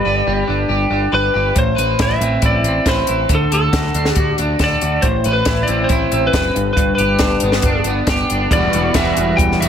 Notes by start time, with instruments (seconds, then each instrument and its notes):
Already playing: clean electric guitar G3, lead electric guitar D5
0.05 picked electric bass G1, clean electric guitar B4
0.27 picked electric bass G1, clean electric guitar G4
0.48 picked electric bass G1, clean electric guitar D4
0.69 picked electric bass G1, clean electric guitar G4
0.90 picked electric bass G1, clean electric guitar D4
1.12 picked electric bass G1, clean electric guitar B4, lead electric guitar B4
1.34 picked electric bass G1, clean electric guitar G4
1.55 picked electric bass A1, clean electric guitar A2, lead electric guitar C5, kick, closed hi-hat
1.76 picked electric bass A1, clean electric guitar B4, closed hi-hat
1.99 picked electric bass A1, clean electric guitar E4, lead electric guitar E5, kick, snare, closed hi-hat
2.20 picked electric bass A1, clean electric guitar C4, closed hi-hat
2.42 picked electric bass A1, clean electric guitar E4, lead electric guitar D5, kick, closed hi-hat
2.62 picked electric bass A1, clean electric guitar C4, closed hi-hat
2.86 picked electric bass A1, clean electric guitar B4, lead electric guitar C5, kick, snare, closed hi-hat
3.07 picked electric bass A1, clean electric guitar E4, closed hi-hat
3.29 picked electric bass D2, clean electric guitar D3, kick, closed hi-hat
3.35 lead electric guitar A4
3.52 picked electric bass D2, clean electric guitar A4, lead electric guitar A4, closed hi-hat
3.73 picked electric bass D2, clean electric guitar F#4, kick, snare, closed hi-hat
3.94 picked electric bass D2, clean electric guitar D4, closed hi-hat
4.05 snare
4.13 picked electric bass D2, lead electric guitar G4, kick, closed hi-hat
4.17 clean electric guitar F#4
4.38 picked electric bass D2, clean electric guitar D4, closed hi-hat
4.59 picked electric bass D2, clean electric guitar A4, kick, snare, closed hi-hat
4.64 lead electric guitar D5
4.81 picked electric bass D2, clean electric guitar F#4, closed hi-hat
5.02 picked electric bass A1, clean electric guitar A2, lead electric guitar C5, kick, closed hi-hat
5.24 picked electric bass A1, clean electric guitar B4, closed hi-hat
5.33 lead electric guitar B4
5.45 picked electric bass A1, clean electric guitar E4, kick, snare, closed hi-hat
5.63 lead electric guitar D5
5.68 picked electric bass A1, clean electric guitar C4, closed hi-hat
5.84 lead electric guitar C5
5.89 picked electric bass A1, clean electric guitar E4, kick, closed hi-hat
6.11 picked electric bass A1, clean electric guitar C4, closed hi-hat
6.27 lead electric guitar B4
6.33 picked electric bass F#1, clean electric guitar B4, kick, snare, closed hi-hat
6.54 picked electric bass G1, clean electric guitar G2, closed hi-hat
6.73 picked electric bass G1, clean electric guitar G2, lead electric guitar B4, kick
6.77 closed hi-hat
6.95 clean electric guitar G4, lead electric guitar B4, closed hi-hat
7.00 picked electric bass G1
7.19 picked electric bass G1, clean electric guitar D4, kick, snare, closed hi-hat
7.40 picked electric bass G1, clean electric guitar B3, closed hi-hat
7.52 snare
7.62 picked electric bass G1, clean electric guitar D4, kick, closed hi-hat
7.84 picked electric bass G1, clean electric guitar B3, closed hi-hat
8.07 picked electric bass G1, clean electric guitar G4, kick, snare, closed hi-hat
8.30 picked electric bass G1, clean electric guitar D4, closed hi-hat
8.51 picked electric bass E1, clean electric guitar E3 G3, lead electric guitar D5, kick, closed hi-hat
8.55 clean electric guitar B3 F#4
8.73 picked electric bass E1, clean electric guitar B3 F#4, closed hi-hat
8.77 clean electric guitar G3
8.94 picked electric bass E1, clean electric guitar E3 G3 B3, lead electric guitar E5, kick, snare, closed hi-hat
8.98 clean electric guitar F#4
9.17 picked electric bass E1, closed hi-hat
9.37 picked electric bass E1, lead electric guitar G5, kick, closed hi-hat
9.52 snare
9.60 picked electric bass E1, clean electric guitar G3 B3 F#4, lead electric guitar E5, closed hi-hat